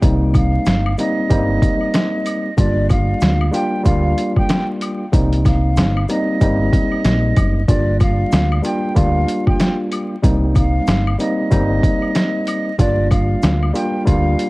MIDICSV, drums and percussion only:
0, 0, Header, 1, 2, 480
1, 0, Start_track
1, 0, Key_signature, -2, "minor"
1, 0, Tempo, 638298
1, 18, Time_signature, 4, 2, 24, 8
1, 10901, End_track
2, 0, Start_track
2, 0, Title_t, "Drums"
2, 18, Note_on_c, 9, 36, 117
2, 18, Note_on_c, 9, 82, 69
2, 20, Note_on_c, 9, 42, 107
2, 93, Note_off_c, 9, 36, 0
2, 93, Note_off_c, 9, 82, 0
2, 95, Note_off_c, 9, 42, 0
2, 256, Note_on_c, 9, 76, 61
2, 256, Note_on_c, 9, 82, 44
2, 261, Note_on_c, 9, 36, 92
2, 264, Note_on_c, 9, 42, 68
2, 331, Note_off_c, 9, 76, 0
2, 331, Note_off_c, 9, 82, 0
2, 336, Note_off_c, 9, 36, 0
2, 339, Note_off_c, 9, 42, 0
2, 492, Note_on_c, 9, 82, 76
2, 499, Note_on_c, 9, 42, 90
2, 501, Note_on_c, 9, 40, 92
2, 507, Note_on_c, 9, 38, 115
2, 568, Note_off_c, 9, 82, 0
2, 575, Note_off_c, 9, 42, 0
2, 577, Note_off_c, 9, 40, 0
2, 582, Note_off_c, 9, 38, 0
2, 646, Note_on_c, 9, 76, 76
2, 721, Note_off_c, 9, 76, 0
2, 735, Note_on_c, 9, 82, 56
2, 743, Note_on_c, 9, 42, 84
2, 810, Note_off_c, 9, 82, 0
2, 818, Note_off_c, 9, 42, 0
2, 978, Note_on_c, 9, 82, 69
2, 980, Note_on_c, 9, 36, 92
2, 982, Note_on_c, 9, 42, 86
2, 1053, Note_off_c, 9, 82, 0
2, 1056, Note_off_c, 9, 36, 0
2, 1057, Note_off_c, 9, 42, 0
2, 1219, Note_on_c, 9, 36, 104
2, 1222, Note_on_c, 9, 42, 78
2, 1223, Note_on_c, 9, 82, 50
2, 1294, Note_off_c, 9, 36, 0
2, 1297, Note_off_c, 9, 42, 0
2, 1298, Note_off_c, 9, 82, 0
2, 1360, Note_on_c, 9, 76, 47
2, 1435, Note_off_c, 9, 76, 0
2, 1457, Note_on_c, 9, 42, 100
2, 1459, Note_on_c, 9, 82, 72
2, 1461, Note_on_c, 9, 40, 95
2, 1466, Note_on_c, 9, 38, 124
2, 1533, Note_off_c, 9, 42, 0
2, 1534, Note_off_c, 9, 82, 0
2, 1536, Note_off_c, 9, 40, 0
2, 1541, Note_off_c, 9, 38, 0
2, 1697, Note_on_c, 9, 42, 73
2, 1703, Note_on_c, 9, 76, 75
2, 1703, Note_on_c, 9, 82, 57
2, 1773, Note_off_c, 9, 42, 0
2, 1779, Note_off_c, 9, 76, 0
2, 1779, Note_off_c, 9, 82, 0
2, 1938, Note_on_c, 9, 36, 119
2, 1938, Note_on_c, 9, 82, 68
2, 1940, Note_on_c, 9, 42, 107
2, 2013, Note_off_c, 9, 36, 0
2, 2013, Note_off_c, 9, 82, 0
2, 2015, Note_off_c, 9, 42, 0
2, 2176, Note_on_c, 9, 76, 60
2, 2176, Note_on_c, 9, 82, 45
2, 2181, Note_on_c, 9, 36, 91
2, 2184, Note_on_c, 9, 42, 70
2, 2251, Note_off_c, 9, 76, 0
2, 2251, Note_off_c, 9, 82, 0
2, 2257, Note_off_c, 9, 36, 0
2, 2259, Note_off_c, 9, 42, 0
2, 2412, Note_on_c, 9, 82, 70
2, 2420, Note_on_c, 9, 42, 91
2, 2422, Note_on_c, 9, 40, 91
2, 2428, Note_on_c, 9, 38, 114
2, 2487, Note_off_c, 9, 82, 0
2, 2496, Note_off_c, 9, 42, 0
2, 2497, Note_off_c, 9, 40, 0
2, 2503, Note_off_c, 9, 38, 0
2, 2565, Note_on_c, 9, 76, 75
2, 2640, Note_off_c, 9, 76, 0
2, 2655, Note_on_c, 9, 82, 55
2, 2663, Note_on_c, 9, 42, 87
2, 2730, Note_off_c, 9, 82, 0
2, 2739, Note_off_c, 9, 42, 0
2, 2898, Note_on_c, 9, 82, 71
2, 2901, Note_on_c, 9, 36, 90
2, 2903, Note_on_c, 9, 42, 86
2, 2973, Note_off_c, 9, 82, 0
2, 2976, Note_off_c, 9, 36, 0
2, 2978, Note_off_c, 9, 42, 0
2, 3143, Note_on_c, 9, 42, 76
2, 3143, Note_on_c, 9, 82, 51
2, 3218, Note_off_c, 9, 42, 0
2, 3218, Note_off_c, 9, 82, 0
2, 3281, Note_on_c, 9, 76, 48
2, 3283, Note_on_c, 9, 36, 90
2, 3356, Note_off_c, 9, 76, 0
2, 3359, Note_off_c, 9, 36, 0
2, 3378, Note_on_c, 9, 42, 99
2, 3380, Note_on_c, 9, 82, 72
2, 3381, Note_on_c, 9, 40, 97
2, 3386, Note_on_c, 9, 38, 119
2, 3453, Note_off_c, 9, 42, 0
2, 3456, Note_off_c, 9, 40, 0
2, 3456, Note_off_c, 9, 82, 0
2, 3462, Note_off_c, 9, 38, 0
2, 3618, Note_on_c, 9, 42, 73
2, 3625, Note_on_c, 9, 76, 77
2, 3625, Note_on_c, 9, 82, 54
2, 3693, Note_off_c, 9, 42, 0
2, 3700, Note_off_c, 9, 76, 0
2, 3700, Note_off_c, 9, 82, 0
2, 3858, Note_on_c, 9, 36, 121
2, 3860, Note_on_c, 9, 42, 106
2, 3860, Note_on_c, 9, 82, 67
2, 3933, Note_off_c, 9, 36, 0
2, 3935, Note_off_c, 9, 82, 0
2, 3936, Note_off_c, 9, 42, 0
2, 4004, Note_on_c, 9, 42, 56
2, 4080, Note_off_c, 9, 42, 0
2, 4097, Note_on_c, 9, 76, 62
2, 4097, Note_on_c, 9, 82, 44
2, 4101, Note_on_c, 9, 36, 91
2, 4104, Note_on_c, 9, 42, 72
2, 4106, Note_on_c, 9, 38, 37
2, 4172, Note_off_c, 9, 76, 0
2, 4172, Note_off_c, 9, 82, 0
2, 4176, Note_off_c, 9, 36, 0
2, 4179, Note_off_c, 9, 42, 0
2, 4181, Note_off_c, 9, 38, 0
2, 4334, Note_on_c, 9, 82, 72
2, 4340, Note_on_c, 9, 42, 93
2, 4342, Note_on_c, 9, 40, 90
2, 4347, Note_on_c, 9, 38, 118
2, 4409, Note_off_c, 9, 82, 0
2, 4415, Note_off_c, 9, 42, 0
2, 4417, Note_off_c, 9, 40, 0
2, 4422, Note_off_c, 9, 38, 0
2, 4487, Note_on_c, 9, 76, 78
2, 4563, Note_off_c, 9, 76, 0
2, 4576, Note_on_c, 9, 82, 55
2, 4583, Note_on_c, 9, 42, 82
2, 4651, Note_off_c, 9, 82, 0
2, 4658, Note_off_c, 9, 42, 0
2, 4819, Note_on_c, 9, 82, 69
2, 4821, Note_on_c, 9, 36, 91
2, 4822, Note_on_c, 9, 42, 84
2, 4895, Note_off_c, 9, 82, 0
2, 4896, Note_off_c, 9, 36, 0
2, 4898, Note_off_c, 9, 42, 0
2, 5059, Note_on_c, 9, 36, 103
2, 5063, Note_on_c, 9, 42, 76
2, 5064, Note_on_c, 9, 82, 49
2, 5135, Note_off_c, 9, 36, 0
2, 5138, Note_off_c, 9, 42, 0
2, 5139, Note_off_c, 9, 82, 0
2, 5201, Note_on_c, 9, 76, 50
2, 5277, Note_off_c, 9, 76, 0
2, 5298, Note_on_c, 9, 42, 97
2, 5300, Note_on_c, 9, 82, 74
2, 5302, Note_on_c, 9, 40, 93
2, 5307, Note_on_c, 9, 38, 118
2, 5374, Note_off_c, 9, 42, 0
2, 5376, Note_off_c, 9, 82, 0
2, 5377, Note_off_c, 9, 40, 0
2, 5383, Note_off_c, 9, 38, 0
2, 5538, Note_on_c, 9, 42, 72
2, 5541, Note_on_c, 9, 36, 100
2, 5544, Note_on_c, 9, 76, 76
2, 5544, Note_on_c, 9, 82, 54
2, 5613, Note_off_c, 9, 42, 0
2, 5616, Note_off_c, 9, 36, 0
2, 5619, Note_off_c, 9, 76, 0
2, 5619, Note_off_c, 9, 82, 0
2, 5778, Note_on_c, 9, 36, 123
2, 5779, Note_on_c, 9, 82, 70
2, 5780, Note_on_c, 9, 42, 107
2, 5854, Note_off_c, 9, 36, 0
2, 5854, Note_off_c, 9, 82, 0
2, 5856, Note_off_c, 9, 42, 0
2, 6017, Note_on_c, 9, 76, 61
2, 6017, Note_on_c, 9, 82, 43
2, 6021, Note_on_c, 9, 36, 92
2, 6024, Note_on_c, 9, 42, 68
2, 6092, Note_off_c, 9, 76, 0
2, 6092, Note_off_c, 9, 82, 0
2, 6097, Note_off_c, 9, 36, 0
2, 6099, Note_off_c, 9, 42, 0
2, 6253, Note_on_c, 9, 82, 74
2, 6259, Note_on_c, 9, 42, 92
2, 6261, Note_on_c, 9, 40, 92
2, 6267, Note_on_c, 9, 38, 115
2, 6328, Note_off_c, 9, 82, 0
2, 6335, Note_off_c, 9, 42, 0
2, 6336, Note_off_c, 9, 40, 0
2, 6342, Note_off_c, 9, 38, 0
2, 6406, Note_on_c, 9, 76, 76
2, 6481, Note_off_c, 9, 76, 0
2, 6495, Note_on_c, 9, 82, 54
2, 6503, Note_on_c, 9, 42, 85
2, 6570, Note_off_c, 9, 82, 0
2, 6578, Note_off_c, 9, 42, 0
2, 6738, Note_on_c, 9, 82, 69
2, 6741, Note_on_c, 9, 36, 93
2, 6742, Note_on_c, 9, 42, 86
2, 6813, Note_off_c, 9, 82, 0
2, 6816, Note_off_c, 9, 36, 0
2, 6817, Note_off_c, 9, 42, 0
2, 6982, Note_on_c, 9, 42, 78
2, 6983, Note_on_c, 9, 82, 51
2, 7057, Note_off_c, 9, 42, 0
2, 7058, Note_off_c, 9, 82, 0
2, 7121, Note_on_c, 9, 76, 48
2, 7123, Note_on_c, 9, 36, 94
2, 7196, Note_off_c, 9, 76, 0
2, 7198, Note_off_c, 9, 36, 0
2, 7217, Note_on_c, 9, 42, 96
2, 7220, Note_on_c, 9, 82, 73
2, 7221, Note_on_c, 9, 40, 96
2, 7226, Note_on_c, 9, 38, 119
2, 7292, Note_off_c, 9, 42, 0
2, 7295, Note_off_c, 9, 82, 0
2, 7296, Note_off_c, 9, 40, 0
2, 7301, Note_off_c, 9, 38, 0
2, 7458, Note_on_c, 9, 42, 72
2, 7464, Note_on_c, 9, 76, 77
2, 7464, Note_on_c, 9, 82, 55
2, 7533, Note_off_c, 9, 42, 0
2, 7539, Note_off_c, 9, 76, 0
2, 7539, Note_off_c, 9, 82, 0
2, 7698, Note_on_c, 9, 36, 116
2, 7699, Note_on_c, 9, 82, 71
2, 7700, Note_on_c, 9, 42, 104
2, 7773, Note_off_c, 9, 36, 0
2, 7774, Note_off_c, 9, 82, 0
2, 7775, Note_off_c, 9, 42, 0
2, 7936, Note_on_c, 9, 76, 59
2, 7936, Note_on_c, 9, 82, 45
2, 7941, Note_on_c, 9, 36, 94
2, 7944, Note_on_c, 9, 42, 68
2, 8012, Note_off_c, 9, 76, 0
2, 8012, Note_off_c, 9, 82, 0
2, 8016, Note_off_c, 9, 36, 0
2, 8019, Note_off_c, 9, 42, 0
2, 8173, Note_on_c, 9, 82, 74
2, 8179, Note_on_c, 9, 42, 90
2, 8181, Note_on_c, 9, 40, 94
2, 8187, Note_on_c, 9, 38, 115
2, 8249, Note_off_c, 9, 82, 0
2, 8255, Note_off_c, 9, 42, 0
2, 8256, Note_off_c, 9, 40, 0
2, 8262, Note_off_c, 9, 38, 0
2, 8327, Note_on_c, 9, 76, 77
2, 8402, Note_off_c, 9, 76, 0
2, 8416, Note_on_c, 9, 82, 57
2, 8423, Note_on_c, 9, 42, 82
2, 8491, Note_off_c, 9, 82, 0
2, 8498, Note_off_c, 9, 42, 0
2, 8659, Note_on_c, 9, 82, 70
2, 8660, Note_on_c, 9, 36, 95
2, 8662, Note_on_c, 9, 42, 85
2, 8734, Note_off_c, 9, 82, 0
2, 8736, Note_off_c, 9, 36, 0
2, 8738, Note_off_c, 9, 42, 0
2, 8899, Note_on_c, 9, 36, 97
2, 8902, Note_on_c, 9, 42, 78
2, 8903, Note_on_c, 9, 82, 51
2, 8974, Note_off_c, 9, 36, 0
2, 8977, Note_off_c, 9, 42, 0
2, 8979, Note_off_c, 9, 82, 0
2, 9041, Note_on_c, 9, 76, 48
2, 9116, Note_off_c, 9, 76, 0
2, 9137, Note_on_c, 9, 42, 100
2, 9140, Note_on_c, 9, 82, 73
2, 9141, Note_on_c, 9, 40, 94
2, 9146, Note_on_c, 9, 38, 120
2, 9212, Note_off_c, 9, 42, 0
2, 9215, Note_off_c, 9, 82, 0
2, 9216, Note_off_c, 9, 40, 0
2, 9221, Note_off_c, 9, 38, 0
2, 9377, Note_on_c, 9, 42, 72
2, 9385, Note_on_c, 9, 76, 78
2, 9385, Note_on_c, 9, 82, 53
2, 9453, Note_off_c, 9, 42, 0
2, 9460, Note_off_c, 9, 76, 0
2, 9460, Note_off_c, 9, 82, 0
2, 9618, Note_on_c, 9, 36, 117
2, 9619, Note_on_c, 9, 82, 70
2, 9620, Note_on_c, 9, 42, 110
2, 9693, Note_off_c, 9, 36, 0
2, 9695, Note_off_c, 9, 42, 0
2, 9695, Note_off_c, 9, 82, 0
2, 9857, Note_on_c, 9, 76, 64
2, 9857, Note_on_c, 9, 82, 44
2, 9861, Note_on_c, 9, 36, 92
2, 9864, Note_on_c, 9, 42, 69
2, 9932, Note_off_c, 9, 76, 0
2, 9932, Note_off_c, 9, 82, 0
2, 9936, Note_off_c, 9, 36, 0
2, 9939, Note_off_c, 9, 42, 0
2, 10093, Note_on_c, 9, 82, 75
2, 10099, Note_on_c, 9, 42, 91
2, 10101, Note_on_c, 9, 40, 93
2, 10106, Note_on_c, 9, 38, 114
2, 10168, Note_off_c, 9, 82, 0
2, 10174, Note_off_c, 9, 42, 0
2, 10176, Note_off_c, 9, 40, 0
2, 10182, Note_off_c, 9, 38, 0
2, 10247, Note_on_c, 9, 76, 77
2, 10322, Note_off_c, 9, 76, 0
2, 10336, Note_on_c, 9, 82, 57
2, 10343, Note_on_c, 9, 42, 87
2, 10412, Note_off_c, 9, 82, 0
2, 10418, Note_off_c, 9, 42, 0
2, 10579, Note_on_c, 9, 82, 72
2, 10580, Note_on_c, 9, 36, 92
2, 10582, Note_on_c, 9, 42, 88
2, 10654, Note_off_c, 9, 82, 0
2, 10656, Note_off_c, 9, 36, 0
2, 10657, Note_off_c, 9, 42, 0
2, 10822, Note_on_c, 9, 42, 76
2, 10823, Note_on_c, 9, 82, 49
2, 10897, Note_off_c, 9, 42, 0
2, 10898, Note_off_c, 9, 82, 0
2, 10901, End_track
0, 0, End_of_file